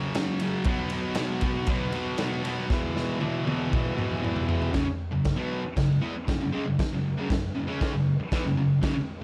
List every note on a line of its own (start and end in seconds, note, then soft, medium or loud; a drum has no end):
0.00 0.15 F#2 loud
0.00 0.15 C#3 medium
0.00 0.15 F#3 medium
0.15 0.41 F#2 medium
0.15 0.42 C#3 medium
0.15 0.42 F#3 loud
0.15 snare loud
0.15 ride loud
0.40 0.66 F#2 medium
0.40 0.65 C#3 loud
0.40 0.65 F#3 loud
0.40 ride medium
0.64 0.91 B2 loud
0.64 0.92 F#3 loud
0.64 0.93 B3 loud
0.64 kick loud
0.64 ride loud
0.90 1.16 B2 medium
0.90 1.16 F#3 medium
0.90 ride medium
0.94 1.18 B3 medium
1.15 1.42 B2 medium
1.15 1.42 F#3 medium
1.15 1.43 B3 loud
1.15 snare loud
1.15 ride loud
1.41 1.67 B2 medium
1.41 1.68 F#3 loud
1.41 1.68 B3 loud
1.41 kick medium
1.41 ride medium
1.67 1.93 B2 medium
1.67 1.94 F#3 loud
1.67 1.94 B3 loud
1.67 kick loud
1.67 ride loud
1.92 2.17 B2 medium
1.92 2.19 F#3 medium
1.92 2.19 B3 medium
1.92 ride medium
2.18 2.42 B2 medium
2.18 2.44 F#3 medium
2.18 2.44 B3 loud
2.18 snare loud
2.18 ride loud
2.44 2.68 B2 medium
2.44 2.69 F#3 loud
2.44 2.69 B3 medium
2.44 ride medium
2.70 2.94 E2 loud
2.70 2.95 B2 loud
2.70 2.95 E3 loud
2.70 kick loud
2.70 snare medium
2.95 3.19 E2 medium
2.95 3.20 B2 loud
2.95 3.20 E3 loud
2.95 snare medium
3.20 3.44 E2 medium
3.20 3.45 B2 loud
3.20 3.45 E3 loud
3.20 high tom medium
3.46 3.70 E2 medium
3.46 3.71 B2 loud
3.46 3.71 E3 medium
3.46 high tom medium
3.71 3.94 E2 loud
3.71 3.95 B2 medium
3.71 3.96 E3 loud
3.71 kick loud
3.71 mid tom loud
3.86 mid tom medium
3.95 4.19 E2 medium
3.95 4.20 B2 medium
3.95 4.21 E3 loud
3.95 mid tom medium
4.11 mid tom medium
4.20 4.46 E2 medium
4.20 4.47 B2 medium
4.20 4.47 E3 medium
4.24 mid tom medium
4.36 floor tom loud
4.47 4.72 E2 medium
4.47 4.72 B2 medium
4.47 4.73 E3 medium
4.47 floor tom loud
4.62 floor tom loud
4.72 4.84 F#2 loud
4.72 4.86 C#3 loud
4.72 kick loud
4.72 snare loud
4.72 crash medium
4.85 muted distorted electric guitar stroke medium
5.11 5.33 F#2 medium
5.11 5.33 C#3 medium
5.24 kick loud
5.24 snare loud
5.24 crash medium
5.36 5.62 B2 medium
5.36 5.63 F#3 medium
5.36 5.63 B3 medium
5.63 muted distorted electric guitar stroke soft
5.77 5.98 F#2 medium
5.77 5.98 C#3 medium
5.77 kick loud
5.77 snare loud
5.77 crash medium
6.02 6.14 E3 medium
6.02 6.14 B3 loud
6.14 muted distorted electric guitar stroke medium
6.27 6.39 F#2 medium
6.27 6.39 C#3 medium
6.27 kick loud
6.27 snare loud
6.27 crash medium
6.40 6.53 F#2 medium
6.40 6.51 C#3 medium
6.53 6.65 C#3 medium
6.53 6.65 G#3 medium
6.66 6.78 F#2 medium
6.66 6.79 C#3 medium
6.79 muted distorted electric guitar stroke medium
6.79 kick loud
6.79 snare loud
6.79 crash medium
6.93 7.13 F#2 medium
6.93 7.13 C#3 medium
7.17 7.29 F#2 medium
7.17 7.29 C#3 loud
7.30 7.51 F#2 medium
7.30 7.51 C#3 medium
7.30 kick loud
7.30 snare loud
7.30 crash medium
7.55 7.68 F#2 medium
7.55 7.66 C#3 medium
7.67 7.92 C#3 medium
7.67 7.93 G#3 medium
7.67 7.93 C#4 loud
7.81 kick loud
7.81 snare loud
7.81 crash medium
7.93 8.14 F#2 medium
7.93 8.14 C#3 medium
8.20 muted distorted electric guitar stroke medium
8.32 8.44 E3 medium
8.32 8.45 B3 medium
8.32 kick loud
8.32 snare loud
8.32 crash medium
8.44 8.56 F#2 medium
8.44 8.56 C#3 medium
8.57 8.78 F#2 medium
8.57 8.78 C#3 medium
8.81 8.94 F#2 loud
8.81 8.95 C#3 loud
8.81 kick loud
8.81 snare loud
8.81 crash medium
8.95 muted distorted electric guitar stroke medium